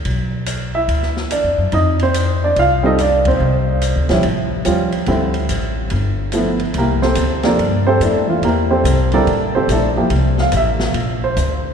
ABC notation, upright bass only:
X:1
M:4/4
L:1/8
Q:"Swing" 1/4=143
K:Cmix
V:1 name="Upright bass" clef=bass
=B,,,4 D,,2- (3D,, F,, ^F,, | F,,4 C,,4 | C,,2- (3C,, D,, B,,, A,,,2 _E,,2 | D,,2 A,,,2 G,,,4 |
C,,2 D,,2 G,,2 F,,2 | E,,2 C,,2 A,,,2 B,,,2 | C,,2 A,,,2 B,,,2 D,,2 |]